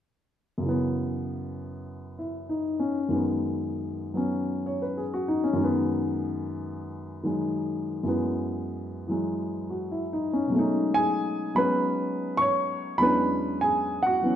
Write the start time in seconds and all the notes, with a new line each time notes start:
0.58 F#2 C#3
0.65 E3 B3
2.19 E4
2.49 D#4
2.80 C#4
3.09 F#2 D#3 G#3
3.14 B3
4.14 F#3 B3 C#4
4.66 C#5
4.82 B4
4.97 G#4
5.14 F#4
5.28 D#4
5.44 C#4
5.53 F#2 D#3
5.60 G#3 B3
7.23 D#3 F#3 G#3
8.03 F#2 E3 G#3
8.08 B3
9.08 E3 F#3 G#3
9.70 F#4
9.91 E4
10.13 D#4
10.33 C#4
10.47 B2 F#3
10.52 G#3 A3
10.56 C#4 D#4
10.94 G#4 G#5
11.55 F#3 G#3 B3 C#4 B4 B5
12.37 C#5 C#6
12.98 E2 E3 F#3 G#3 C#4 B5
13.02 D4 B4
13.61 G#4 G#5
14.03 F#4 F#5
14.22 E3 F#3 B3 C#4